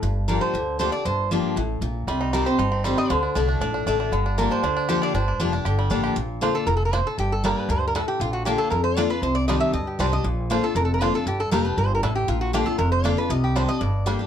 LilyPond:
<<
  \new Staff \with { instrumentName = "Resonator guitar played with a steel bar" } { \time 4/4 \key g \minor \tempo 4 = 235 r4 bes'8 c''4. c''8 d''8 | c''4 r2. | r4 bes'8 c''4. c''8 ees''8 | c''4 r2. |
r4 bes'8 c''4. c''8 d''8 | c''4 r2. | r4 c''8 a'8 \tuplet 3/2 { bes'8 a'8 bes'8 } c''8 a'8 | g'8 a'8 bes'8 b'8 \tuplet 3/2 { bes'8 c''8 bes'8 } a'8 g'8 |
f'8 fis'8 g'8 a'8 bes'8 c''8 d''8 b'8 | c''8 d''8 ees''8 e''8 ees''8 g'8 c''8 ees''8 | r4 c''8 a'8 \tuplet 3/2 { bes'8 a'8 bes'8 } c''8 a'8 | g'8 a'8 bes'8 b'8 \tuplet 3/2 { bes'8 c''8 bes'8 } a'8 g'8 |
f'8 fis'8 g'8 a'8 bes'8 c''8 d''8 b'8 | ees''8 g'8 c''8 ees''8 d''4.~ d''16 r16 | }
  \new Staff \with { instrumentName = "Five-string banjo" } { \time 4/4 \key g \minor r1 | r1 | g8 ees'8 g8 g'8 ees'8 c'8 g8 c'8 | d8 d'8 d'8 d'8 d'8 d'8 d'8 d'8 |
d8 d'8 d'8 d'8 d'8 d'8 g'8 d'8 | d'8 d'8 d'8 d'8 g'8 g8 d'8 g'8 | r4 <bes d'>8 r4. <bes d'>8 r8 | r4 <g d'>8 r4. <g d'>8 r8 |
r4 <bes d'>8 r4. <bes d'>8 r8 | r4 <g c' d'>8 r4. <g c' d'>8 r8 | r4 <bes d'>8 r4. <bes d'>8 r8 | r4 <g d'>8 r4. <g d'>8 r8 |
r4 <bes d'>8 r4. <bes d'>8 r8 | r4 <g c' d'>8 r4. <g d'>8 r8 | }
  \new Staff \with { instrumentName = "Steel-string acoustic guitar" } { \time 4/4 \key g \minor << { r4 <f bes d' g'>4 r4 <f bes d' g'>8 <d' g'>8 | r4 <f bes d' g'>4 r2 | r4 <ees g c' g'>8 <c' g'>8 r4 <ees g c' g'>4 | r4 <d a d' fis'>4 r4 <d a d' fis'>4 |
r4 <f bes d' g'>4 r4 <f bes d' g'>4 | r4 <f bes d' g'>8 <d' g'>8 r4 <f bes d' g'>4 | r4 <d bes d' f'>4 r2 | r4 <g bes d' g'>4 r2 |
r4 <d bes d' f'>4 r4 <d bes d' f'>8 <d' f'>8 | r4 <ees g d' g'>4 r4 <ees g d' g'>8 <d' g'>8 | r4 <d bes d' f'>8 <d' f'>8 r4 <d bes d' f'>8 <d' f'>8 | r4 <g bes d' g'>8 <d' g'>8 r2 |
r4 <d bes d' f'>8 <d' f'>8 r4 <d bes d' f'>8 <d' f'>8 | r4 <ees g d' g'>8 <d' g'>8 r4 <g bes d' g'>8 <d' g'>8 | } \\ { g,2 d2 | g,2 a,4 bes,4 | c2 g,2 | d2 a,2 |
g,2 d2 | g,2 d2 | bes,2 bes,4 a,4 | g,2 g,4 a,4 |
bes,2 f,2 | c2 g,2 | bes,2 f,2 | g,2 g,4 a,4 |
bes,2 f,2 | c2 g,2 | } >> }
  \new Staff \with { instrumentName = "Upright bass" } { \clef bass \time 4/4 \key g \minor g,,2 d,2 | g,,2 a,,4 bes,,4 | c,2 g,,2 | d,4 c,4 bes,,4 a,,4 |
g,,2 d,2 | g,,4 f,,4 g,,4 a,,4 | bes,,2 f,,2 | g,,2 d,2 |
bes,,2 f,2 | c,2 d,4 c,4 | bes,,2 f,,2 | g,,4 f,,4 g,,4 a,,4 |
bes,,2 f,,2 | c,2 g,,2 | }
>>